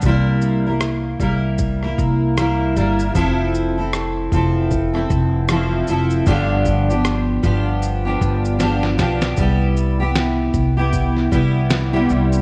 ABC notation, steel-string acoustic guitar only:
X:1
M:4/4
L:1/16
Q:"Swing 16ths" 1/4=77
K:C
V:1 name="Steel-string acoustic guitar"
[C,G,_B,E_B]3 [B,EB]3 [G,B,EB]3 [B,EB]3 [G,B,EB]2 [G,B,EB]2 | [F,CEA]3 [CEA]3 [F,CEA]3 [CEA]3 [F,CEA]2 [F,CEA]2 | [G,,D,F,B,DG]3 [F,B,DG]3 [F,B,DG]3 [F,B,DG]3 [F,B,DG]2 [F,B,DG]2 | [G,B,EG]3 [B,EG]4 [B,EG]3 [G,B,EG]3 [C,G,B,EG]3 |]